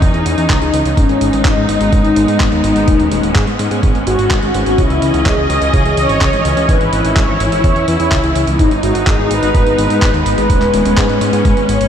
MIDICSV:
0, 0, Header, 1, 5, 480
1, 0, Start_track
1, 0, Key_signature, 4, "minor"
1, 0, Tempo, 476190
1, 982, Time_signature, 4, 2, 24, 8
1, 11975, End_track
2, 0, Start_track
2, 0, Title_t, "Analog polysynth"
2, 0, Program_c, 0, 90
2, 259, Note_on_c, 0, 63, 113
2, 981, Note_on_c, 0, 61, 111
2, 1002, Note_off_c, 0, 63, 0
2, 1462, Note_on_c, 0, 63, 103
2, 1476, Note_off_c, 0, 61, 0
2, 1909, Note_off_c, 0, 63, 0
2, 1943, Note_on_c, 0, 63, 103
2, 2389, Note_off_c, 0, 63, 0
2, 2661, Note_on_c, 0, 63, 118
2, 3108, Note_off_c, 0, 63, 0
2, 4100, Note_on_c, 0, 66, 92
2, 4823, Note_on_c, 0, 64, 93
2, 4843, Note_off_c, 0, 66, 0
2, 5269, Note_off_c, 0, 64, 0
2, 5301, Note_on_c, 0, 68, 93
2, 5770, Note_off_c, 0, 68, 0
2, 5782, Note_on_c, 0, 68, 98
2, 6021, Note_on_c, 0, 73, 108
2, 6029, Note_off_c, 0, 68, 0
2, 6740, Note_on_c, 0, 71, 109
2, 6763, Note_off_c, 0, 73, 0
2, 7222, Note_on_c, 0, 73, 104
2, 7235, Note_off_c, 0, 71, 0
2, 7688, Note_off_c, 0, 73, 0
2, 7700, Note_on_c, 0, 73, 102
2, 7924, Note_off_c, 0, 73, 0
2, 7940, Note_on_c, 0, 64, 99
2, 8661, Note_on_c, 0, 63, 97
2, 8683, Note_off_c, 0, 64, 0
2, 8769, Note_off_c, 0, 63, 0
2, 8900, Note_on_c, 0, 66, 91
2, 9141, Note_on_c, 0, 68, 93
2, 9148, Note_off_c, 0, 66, 0
2, 9381, Note_on_c, 0, 71, 121
2, 9389, Note_off_c, 0, 68, 0
2, 11783, Note_on_c, 0, 73, 118
2, 11854, Note_off_c, 0, 71, 0
2, 11975, Note_off_c, 0, 73, 0
2, 11975, End_track
3, 0, Start_track
3, 0, Title_t, "String section"
3, 0, Program_c, 1, 48
3, 0, Note_on_c, 1, 52, 76
3, 0, Note_on_c, 1, 61, 72
3, 0, Note_on_c, 1, 63, 86
3, 944, Note_off_c, 1, 61, 0
3, 945, Note_off_c, 1, 52, 0
3, 963, Note_off_c, 1, 63, 0
3, 983, Note_on_c, 1, 56, 78
3, 983, Note_on_c, 1, 59, 75
3, 983, Note_on_c, 1, 63, 85
3, 2883, Note_off_c, 1, 63, 0
3, 2902, Note_on_c, 1, 61, 84
3, 4784, Note_off_c, 1, 56, 0
3, 4784, Note_off_c, 1, 59, 0
3, 4823, Note_on_c, 1, 52, 73
3, 4823, Note_on_c, 1, 75, 86
3, 6723, Note_off_c, 1, 75, 0
3, 6744, Note_on_c, 1, 64, 88
3, 8622, Note_off_c, 1, 61, 0
3, 8624, Note_off_c, 1, 52, 0
3, 8644, Note_off_c, 1, 64, 0
3, 8662, Note_on_c, 1, 56, 75
3, 8662, Note_on_c, 1, 59, 70
3, 8662, Note_on_c, 1, 63, 90
3, 10563, Note_off_c, 1, 63, 0
3, 10583, Note_on_c, 1, 61, 87
3, 11975, Note_off_c, 1, 56, 0
3, 11975, Note_off_c, 1, 59, 0
3, 11975, Note_off_c, 1, 61, 0
3, 11975, End_track
4, 0, Start_track
4, 0, Title_t, "Analog synth bass"
4, 0, Program_c, 2, 38
4, 21, Note_on_c, 2, 40, 102
4, 119, Note_off_c, 2, 40, 0
4, 140, Note_on_c, 2, 40, 73
4, 239, Note_off_c, 2, 40, 0
4, 261, Note_on_c, 2, 40, 98
4, 359, Note_off_c, 2, 40, 0
4, 381, Note_on_c, 2, 40, 82
4, 480, Note_off_c, 2, 40, 0
4, 501, Note_on_c, 2, 37, 99
4, 599, Note_off_c, 2, 37, 0
4, 621, Note_on_c, 2, 37, 75
4, 719, Note_off_c, 2, 37, 0
4, 741, Note_on_c, 2, 37, 92
4, 839, Note_off_c, 2, 37, 0
4, 861, Note_on_c, 2, 37, 84
4, 959, Note_off_c, 2, 37, 0
4, 981, Note_on_c, 2, 32, 102
4, 1079, Note_off_c, 2, 32, 0
4, 1101, Note_on_c, 2, 32, 81
4, 1199, Note_off_c, 2, 32, 0
4, 1222, Note_on_c, 2, 32, 94
4, 1320, Note_off_c, 2, 32, 0
4, 1342, Note_on_c, 2, 32, 82
4, 1440, Note_off_c, 2, 32, 0
4, 1461, Note_on_c, 2, 32, 100
4, 1559, Note_off_c, 2, 32, 0
4, 1581, Note_on_c, 2, 32, 75
4, 1679, Note_off_c, 2, 32, 0
4, 1702, Note_on_c, 2, 32, 91
4, 1800, Note_off_c, 2, 32, 0
4, 1821, Note_on_c, 2, 32, 79
4, 1919, Note_off_c, 2, 32, 0
4, 1941, Note_on_c, 2, 32, 102
4, 2039, Note_off_c, 2, 32, 0
4, 2062, Note_on_c, 2, 32, 72
4, 2160, Note_off_c, 2, 32, 0
4, 2181, Note_on_c, 2, 32, 100
4, 2279, Note_off_c, 2, 32, 0
4, 2301, Note_on_c, 2, 44, 79
4, 2399, Note_off_c, 2, 44, 0
4, 2421, Note_on_c, 2, 32, 99
4, 2519, Note_off_c, 2, 32, 0
4, 2541, Note_on_c, 2, 39, 77
4, 2639, Note_off_c, 2, 39, 0
4, 2660, Note_on_c, 2, 32, 93
4, 2759, Note_off_c, 2, 32, 0
4, 2780, Note_on_c, 2, 32, 78
4, 2879, Note_off_c, 2, 32, 0
4, 2901, Note_on_c, 2, 27, 99
4, 2999, Note_off_c, 2, 27, 0
4, 3021, Note_on_c, 2, 27, 78
4, 3119, Note_off_c, 2, 27, 0
4, 3140, Note_on_c, 2, 27, 96
4, 3239, Note_off_c, 2, 27, 0
4, 3261, Note_on_c, 2, 27, 79
4, 3359, Note_off_c, 2, 27, 0
4, 3382, Note_on_c, 2, 44, 107
4, 3480, Note_off_c, 2, 44, 0
4, 3502, Note_on_c, 2, 44, 75
4, 3599, Note_off_c, 2, 44, 0
4, 3622, Note_on_c, 2, 44, 88
4, 3720, Note_off_c, 2, 44, 0
4, 3742, Note_on_c, 2, 44, 81
4, 3839, Note_off_c, 2, 44, 0
4, 3862, Note_on_c, 2, 32, 99
4, 3960, Note_off_c, 2, 32, 0
4, 3982, Note_on_c, 2, 32, 76
4, 4079, Note_off_c, 2, 32, 0
4, 4102, Note_on_c, 2, 32, 99
4, 4200, Note_off_c, 2, 32, 0
4, 4222, Note_on_c, 2, 32, 82
4, 4319, Note_off_c, 2, 32, 0
4, 4342, Note_on_c, 2, 32, 100
4, 4440, Note_off_c, 2, 32, 0
4, 4461, Note_on_c, 2, 32, 81
4, 4559, Note_off_c, 2, 32, 0
4, 4582, Note_on_c, 2, 32, 91
4, 4680, Note_off_c, 2, 32, 0
4, 4701, Note_on_c, 2, 32, 78
4, 4799, Note_off_c, 2, 32, 0
4, 4822, Note_on_c, 2, 37, 98
4, 4920, Note_off_c, 2, 37, 0
4, 4942, Note_on_c, 2, 37, 82
4, 5040, Note_off_c, 2, 37, 0
4, 5062, Note_on_c, 2, 37, 93
4, 5160, Note_off_c, 2, 37, 0
4, 5182, Note_on_c, 2, 37, 80
4, 5280, Note_off_c, 2, 37, 0
4, 5302, Note_on_c, 2, 37, 104
4, 5400, Note_off_c, 2, 37, 0
4, 5421, Note_on_c, 2, 37, 73
4, 5519, Note_off_c, 2, 37, 0
4, 5542, Note_on_c, 2, 37, 92
4, 5640, Note_off_c, 2, 37, 0
4, 5661, Note_on_c, 2, 37, 83
4, 5759, Note_off_c, 2, 37, 0
4, 5782, Note_on_c, 2, 37, 104
4, 5880, Note_off_c, 2, 37, 0
4, 5901, Note_on_c, 2, 37, 70
4, 5999, Note_off_c, 2, 37, 0
4, 6021, Note_on_c, 2, 37, 97
4, 6119, Note_off_c, 2, 37, 0
4, 6142, Note_on_c, 2, 32, 82
4, 6240, Note_off_c, 2, 32, 0
4, 6262, Note_on_c, 2, 37, 99
4, 6360, Note_off_c, 2, 37, 0
4, 6382, Note_on_c, 2, 32, 82
4, 6480, Note_off_c, 2, 32, 0
4, 6502, Note_on_c, 2, 37, 94
4, 6600, Note_off_c, 2, 37, 0
4, 6622, Note_on_c, 2, 37, 83
4, 6720, Note_off_c, 2, 37, 0
4, 6742, Note_on_c, 2, 32, 99
4, 6840, Note_off_c, 2, 32, 0
4, 6862, Note_on_c, 2, 32, 78
4, 6960, Note_off_c, 2, 32, 0
4, 6982, Note_on_c, 2, 32, 91
4, 7080, Note_off_c, 2, 32, 0
4, 7103, Note_on_c, 2, 32, 79
4, 7200, Note_off_c, 2, 32, 0
4, 7221, Note_on_c, 2, 32, 106
4, 7319, Note_off_c, 2, 32, 0
4, 7342, Note_on_c, 2, 32, 77
4, 7440, Note_off_c, 2, 32, 0
4, 7462, Note_on_c, 2, 32, 90
4, 7560, Note_off_c, 2, 32, 0
4, 7583, Note_on_c, 2, 32, 77
4, 7680, Note_off_c, 2, 32, 0
4, 7701, Note_on_c, 2, 40, 98
4, 7800, Note_off_c, 2, 40, 0
4, 7823, Note_on_c, 2, 40, 73
4, 7920, Note_off_c, 2, 40, 0
4, 7943, Note_on_c, 2, 40, 100
4, 8040, Note_off_c, 2, 40, 0
4, 8063, Note_on_c, 2, 40, 79
4, 8160, Note_off_c, 2, 40, 0
4, 8182, Note_on_c, 2, 37, 96
4, 8280, Note_off_c, 2, 37, 0
4, 8303, Note_on_c, 2, 37, 78
4, 8400, Note_off_c, 2, 37, 0
4, 8423, Note_on_c, 2, 37, 89
4, 8520, Note_off_c, 2, 37, 0
4, 8543, Note_on_c, 2, 37, 86
4, 8640, Note_off_c, 2, 37, 0
4, 8662, Note_on_c, 2, 32, 101
4, 8760, Note_off_c, 2, 32, 0
4, 8782, Note_on_c, 2, 32, 78
4, 8879, Note_off_c, 2, 32, 0
4, 8902, Note_on_c, 2, 32, 99
4, 9000, Note_off_c, 2, 32, 0
4, 9022, Note_on_c, 2, 32, 81
4, 9120, Note_off_c, 2, 32, 0
4, 9142, Note_on_c, 2, 32, 105
4, 9240, Note_off_c, 2, 32, 0
4, 9263, Note_on_c, 2, 32, 75
4, 9360, Note_off_c, 2, 32, 0
4, 9382, Note_on_c, 2, 32, 85
4, 9480, Note_off_c, 2, 32, 0
4, 9502, Note_on_c, 2, 32, 81
4, 9600, Note_off_c, 2, 32, 0
4, 9622, Note_on_c, 2, 32, 101
4, 9720, Note_off_c, 2, 32, 0
4, 9741, Note_on_c, 2, 32, 74
4, 9839, Note_off_c, 2, 32, 0
4, 9861, Note_on_c, 2, 32, 100
4, 9959, Note_off_c, 2, 32, 0
4, 9981, Note_on_c, 2, 44, 80
4, 10079, Note_off_c, 2, 44, 0
4, 10102, Note_on_c, 2, 32, 96
4, 10200, Note_off_c, 2, 32, 0
4, 10221, Note_on_c, 2, 39, 76
4, 10319, Note_off_c, 2, 39, 0
4, 10341, Note_on_c, 2, 32, 92
4, 10439, Note_off_c, 2, 32, 0
4, 10461, Note_on_c, 2, 32, 85
4, 10559, Note_off_c, 2, 32, 0
4, 10581, Note_on_c, 2, 27, 97
4, 10679, Note_off_c, 2, 27, 0
4, 10700, Note_on_c, 2, 27, 77
4, 10799, Note_off_c, 2, 27, 0
4, 10821, Note_on_c, 2, 27, 95
4, 10919, Note_off_c, 2, 27, 0
4, 10941, Note_on_c, 2, 27, 81
4, 11039, Note_off_c, 2, 27, 0
4, 11062, Note_on_c, 2, 44, 103
4, 11160, Note_off_c, 2, 44, 0
4, 11181, Note_on_c, 2, 44, 79
4, 11279, Note_off_c, 2, 44, 0
4, 11302, Note_on_c, 2, 44, 88
4, 11400, Note_off_c, 2, 44, 0
4, 11421, Note_on_c, 2, 44, 83
4, 11519, Note_off_c, 2, 44, 0
4, 11542, Note_on_c, 2, 32, 103
4, 11640, Note_off_c, 2, 32, 0
4, 11662, Note_on_c, 2, 32, 74
4, 11760, Note_off_c, 2, 32, 0
4, 11781, Note_on_c, 2, 32, 98
4, 11879, Note_off_c, 2, 32, 0
4, 11902, Note_on_c, 2, 32, 80
4, 11975, Note_off_c, 2, 32, 0
4, 11975, End_track
5, 0, Start_track
5, 0, Title_t, "Drums"
5, 21, Note_on_c, 9, 36, 124
5, 22, Note_on_c, 9, 42, 72
5, 122, Note_off_c, 9, 36, 0
5, 122, Note_off_c, 9, 42, 0
5, 142, Note_on_c, 9, 42, 36
5, 243, Note_off_c, 9, 42, 0
5, 261, Note_on_c, 9, 42, 79
5, 362, Note_off_c, 9, 42, 0
5, 381, Note_on_c, 9, 42, 47
5, 482, Note_off_c, 9, 42, 0
5, 501, Note_on_c, 9, 36, 114
5, 502, Note_on_c, 9, 39, 114
5, 502, Note_on_c, 9, 42, 75
5, 602, Note_off_c, 9, 36, 0
5, 603, Note_off_c, 9, 39, 0
5, 603, Note_off_c, 9, 42, 0
5, 621, Note_on_c, 9, 42, 36
5, 722, Note_off_c, 9, 42, 0
5, 742, Note_on_c, 9, 42, 77
5, 843, Note_off_c, 9, 42, 0
5, 862, Note_on_c, 9, 42, 49
5, 963, Note_off_c, 9, 42, 0
5, 981, Note_on_c, 9, 36, 123
5, 982, Note_on_c, 9, 42, 77
5, 1082, Note_off_c, 9, 36, 0
5, 1083, Note_off_c, 9, 42, 0
5, 1101, Note_on_c, 9, 42, 36
5, 1202, Note_off_c, 9, 42, 0
5, 1222, Note_on_c, 9, 42, 70
5, 1322, Note_off_c, 9, 42, 0
5, 1341, Note_on_c, 9, 42, 51
5, 1442, Note_off_c, 9, 42, 0
5, 1461, Note_on_c, 9, 36, 120
5, 1461, Note_on_c, 9, 39, 120
5, 1461, Note_on_c, 9, 42, 78
5, 1562, Note_off_c, 9, 36, 0
5, 1562, Note_off_c, 9, 39, 0
5, 1562, Note_off_c, 9, 42, 0
5, 1701, Note_on_c, 9, 42, 78
5, 1802, Note_off_c, 9, 42, 0
5, 1821, Note_on_c, 9, 42, 49
5, 1922, Note_off_c, 9, 42, 0
5, 1940, Note_on_c, 9, 42, 71
5, 1941, Note_on_c, 9, 36, 124
5, 2041, Note_off_c, 9, 42, 0
5, 2042, Note_off_c, 9, 36, 0
5, 2061, Note_on_c, 9, 42, 36
5, 2162, Note_off_c, 9, 42, 0
5, 2181, Note_on_c, 9, 42, 72
5, 2281, Note_off_c, 9, 42, 0
5, 2301, Note_on_c, 9, 42, 49
5, 2402, Note_off_c, 9, 42, 0
5, 2421, Note_on_c, 9, 36, 123
5, 2421, Note_on_c, 9, 39, 114
5, 2421, Note_on_c, 9, 42, 72
5, 2521, Note_off_c, 9, 39, 0
5, 2521, Note_off_c, 9, 42, 0
5, 2522, Note_off_c, 9, 36, 0
5, 2540, Note_on_c, 9, 42, 33
5, 2641, Note_off_c, 9, 42, 0
5, 2660, Note_on_c, 9, 42, 75
5, 2761, Note_off_c, 9, 42, 0
5, 2780, Note_on_c, 9, 42, 46
5, 2881, Note_off_c, 9, 42, 0
5, 2900, Note_on_c, 9, 42, 78
5, 2902, Note_on_c, 9, 36, 121
5, 3001, Note_off_c, 9, 42, 0
5, 3002, Note_off_c, 9, 36, 0
5, 3020, Note_on_c, 9, 42, 34
5, 3121, Note_off_c, 9, 42, 0
5, 3140, Note_on_c, 9, 42, 71
5, 3241, Note_off_c, 9, 42, 0
5, 3260, Note_on_c, 9, 42, 48
5, 3360, Note_off_c, 9, 42, 0
5, 3381, Note_on_c, 9, 39, 120
5, 3381, Note_on_c, 9, 42, 73
5, 3382, Note_on_c, 9, 36, 114
5, 3482, Note_off_c, 9, 36, 0
5, 3482, Note_off_c, 9, 39, 0
5, 3482, Note_off_c, 9, 42, 0
5, 3501, Note_on_c, 9, 42, 33
5, 3602, Note_off_c, 9, 42, 0
5, 3621, Note_on_c, 9, 42, 74
5, 3722, Note_off_c, 9, 42, 0
5, 3741, Note_on_c, 9, 42, 46
5, 3842, Note_off_c, 9, 42, 0
5, 3862, Note_on_c, 9, 36, 125
5, 3862, Note_on_c, 9, 42, 72
5, 3963, Note_off_c, 9, 36, 0
5, 3963, Note_off_c, 9, 42, 0
5, 3982, Note_on_c, 9, 42, 35
5, 4082, Note_off_c, 9, 42, 0
5, 4101, Note_on_c, 9, 42, 75
5, 4202, Note_off_c, 9, 42, 0
5, 4221, Note_on_c, 9, 42, 46
5, 4322, Note_off_c, 9, 42, 0
5, 4341, Note_on_c, 9, 39, 117
5, 4341, Note_on_c, 9, 42, 71
5, 4342, Note_on_c, 9, 36, 118
5, 4442, Note_off_c, 9, 39, 0
5, 4442, Note_off_c, 9, 42, 0
5, 4443, Note_off_c, 9, 36, 0
5, 4461, Note_on_c, 9, 42, 34
5, 4562, Note_off_c, 9, 42, 0
5, 4580, Note_on_c, 9, 42, 75
5, 4681, Note_off_c, 9, 42, 0
5, 4701, Note_on_c, 9, 42, 45
5, 4802, Note_off_c, 9, 42, 0
5, 4821, Note_on_c, 9, 42, 76
5, 4822, Note_on_c, 9, 36, 110
5, 4922, Note_off_c, 9, 42, 0
5, 4923, Note_off_c, 9, 36, 0
5, 4942, Note_on_c, 9, 42, 36
5, 5043, Note_off_c, 9, 42, 0
5, 5061, Note_on_c, 9, 42, 67
5, 5162, Note_off_c, 9, 42, 0
5, 5181, Note_on_c, 9, 42, 49
5, 5282, Note_off_c, 9, 42, 0
5, 5301, Note_on_c, 9, 39, 113
5, 5301, Note_on_c, 9, 42, 76
5, 5302, Note_on_c, 9, 36, 113
5, 5402, Note_off_c, 9, 39, 0
5, 5402, Note_off_c, 9, 42, 0
5, 5403, Note_off_c, 9, 36, 0
5, 5542, Note_on_c, 9, 42, 77
5, 5643, Note_off_c, 9, 42, 0
5, 5662, Note_on_c, 9, 42, 49
5, 5763, Note_off_c, 9, 42, 0
5, 5782, Note_on_c, 9, 36, 121
5, 5782, Note_on_c, 9, 42, 68
5, 5882, Note_off_c, 9, 42, 0
5, 5883, Note_off_c, 9, 36, 0
5, 5902, Note_on_c, 9, 42, 36
5, 6003, Note_off_c, 9, 42, 0
5, 6022, Note_on_c, 9, 42, 75
5, 6122, Note_off_c, 9, 42, 0
5, 6142, Note_on_c, 9, 42, 45
5, 6243, Note_off_c, 9, 42, 0
5, 6262, Note_on_c, 9, 36, 117
5, 6262, Note_on_c, 9, 39, 108
5, 6262, Note_on_c, 9, 42, 73
5, 6363, Note_off_c, 9, 36, 0
5, 6363, Note_off_c, 9, 39, 0
5, 6363, Note_off_c, 9, 42, 0
5, 6382, Note_on_c, 9, 42, 34
5, 6483, Note_off_c, 9, 42, 0
5, 6502, Note_on_c, 9, 42, 79
5, 6603, Note_off_c, 9, 42, 0
5, 6623, Note_on_c, 9, 42, 48
5, 6724, Note_off_c, 9, 42, 0
5, 6742, Note_on_c, 9, 36, 103
5, 6743, Note_on_c, 9, 42, 80
5, 6842, Note_off_c, 9, 36, 0
5, 6843, Note_off_c, 9, 42, 0
5, 6862, Note_on_c, 9, 42, 34
5, 6963, Note_off_c, 9, 42, 0
5, 6982, Note_on_c, 9, 42, 73
5, 7083, Note_off_c, 9, 42, 0
5, 7102, Note_on_c, 9, 42, 51
5, 7203, Note_off_c, 9, 42, 0
5, 7222, Note_on_c, 9, 36, 105
5, 7222, Note_on_c, 9, 39, 113
5, 7222, Note_on_c, 9, 42, 77
5, 7322, Note_off_c, 9, 36, 0
5, 7323, Note_off_c, 9, 39, 0
5, 7323, Note_off_c, 9, 42, 0
5, 7462, Note_on_c, 9, 42, 77
5, 7563, Note_off_c, 9, 42, 0
5, 7582, Note_on_c, 9, 42, 52
5, 7683, Note_off_c, 9, 42, 0
5, 7702, Note_on_c, 9, 36, 115
5, 7702, Note_on_c, 9, 42, 69
5, 7802, Note_off_c, 9, 36, 0
5, 7803, Note_off_c, 9, 42, 0
5, 7822, Note_on_c, 9, 42, 35
5, 7922, Note_off_c, 9, 42, 0
5, 7941, Note_on_c, 9, 42, 76
5, 8042, Note_off_c, 9, 42, 0
5, 8062, Note_on_c, 9, 42, 48
5, 8162, Note_off_c, 9, 42, 0
5, 8181, Note_on_c, 9, 39, 106
5, 8181, Note_on_c, 9, 42, 76
5, 8182, Note_on_c, 9, 36, 107
5, 8282, Note_off_c, 9, 36, 0
5, 8282, Note_off_c, 9, 39, 0
5, 8282, Note_off_c, 9, 42, 0
5, 8301, Note_on_c, 9, 42, 35
5, 8402, Note_off_c, 9, 42, 0
5, 8422, Note_on_c, 9, 42, 77
5, 8522, Note_off_c, 9, 42, 0
5, 8542, Note_on_c, 9, 42, 48
5, 8642, Note_off_c, 9, 42, 0
5, 8662, Note_on_c, 9, 36, 101
5, 8662, Note_on_c, 9, 42, 80
5, 8762, Note_off_c, 9, 36, 0
5, 8763, Note_off_c, 9, 42, 0
5, 8782, Note_on_c, 9, 42, 38
5, 8883, Note_off_c, 9, 42, 0
5, 8902, Note_on_c, 9, 42, 70
5, 9003, Note_off_c, 9, 42, 0
5, 9022, Note_on_c, 9, 42, 53
5, 9122, Note_off_c, 9, 42, 0
5, 9142, Note_on_c, 9, 36, 111
5, 9142, Note_on_c, 9, 39, 110
5, 9142, Note_on_c, 9, 42, 76
5, 9242, Note_off_c, 9, 36, 0
5, 9243, Note_off_c, 9, 39, 0
5, 9243, Note_off_c, 9, 42, 0
5, 9382, Note_on_c, 9, 42, 79
5, 9483, Note_off_c, 9, 42, 0
5, 9502, Note_on_c, 9, 42, 53
5, 9603, Note_off_c, 9, 42, 0
5, 9622, Note_on_c, 9, 36, 112
5, 9622, Note_on_c, 9, 42, 74
5, 9723, Note_off_c, 9, 36, 0
5, 9723, Note_off_c, 9, 42, 0
5, 9742, Note_on_c, 9, 42, 36
5, 9843, Note_off_c, 9, 42, 0
5, 9863, Note_on_c, 9, 42, 78
5, 9963, Note_off_c, 9, 42, 0
5, 9982, Note_on_c, 9, 42, 52
5, 10083, Note_off_c, 9, 42, 0
5, 10102, Note_on_c, 9, 36, 113
5, 10102, Note_on_c, 9, 39, 109
5, 10102, Note_on_c, 9, 42, 81
5, 10203, Note_off_c, 9, 36, 0
5, 10203, Note_off_c, 9, 39, 0
5, 10203, Note_off_c, 9, 42, 0
5, 10221, Note_on_c, 9, 42, 37
5, 10322, Note_off_c, 9, 42, 0
5, 10342, Note_on_c, 9, 42, 83
5, 10443, Note_off_c, 9, 42, 0
5, 10462, Note_on_c, 9, 42, 49
5, 10563, Note_off_c, 9, 42, 0
5, 10582, Note_on_c, 9, 36, 114
5, 10582, Note_on_c, 9, 42, 83
5, 10682, Note_off_c, 9, 36, 0
5, 10683, Note_off_c, 9, 42, 0
5, 10703, Note_on_c, 9, 39, 35
5, 10703, Note_on_c, 9, 42, 39
5, 10804, Note_off_c, 9, 39, 0
5, 10804, Note_off_c, 9, 42, 0
5, 10822, Note_on_c, 9, 42, 73
5, 10922, Note_off_c, 9, 42, 0
5, 10942, Note_on_c, 9, 42, 55
5, 11042, Note_off_c, 9, 42, 0
5, 11062, Note_on_c, 9, 36, 113
5, 11062, Note_on_c, 9, 39, 112
5, 11062, Note_on_c, 9, 42, 83
5, 11163, Note_off_c, 9, 36, 0
5, 11163, Note_off_c, 9, 39, 0
5, 11163, Note_off_c, 9, 42, 0
5, 11182, Note_on_c, 9, 42, 35
5, 11283, Note_off_c, 9, 42, 0
5, 11302, Note_on_c, 9, 42, 81
5, 11403, Note_off_c, 9, 42, 0
5, 11422, Note_on_c, 9, 42, 53
5, 11523, Note_off_c, 9, 42, 0
5, 11542, Note_on_c, 9, 36, 114
5, 11542, Note_on_c, 9, 42, 75
5, 11642, Note_off_c, 9, 42, 0
5, 11643, Note_off_c, 9, 36, 0
5, 11662, Note_on_c, 9, 42, 36
5, 11763, Note_off_c, 9, 42, 0
5, 11783, Note_on_c, 9, 42, 80
5, 11883, Note_off_c, 9, 42, 0
5, 11902, Note_on_c, 9, 42, 53
5, 11975, Note_off_c, 9, 42, 0
5, 11975, End_track
0, 0, End_of_file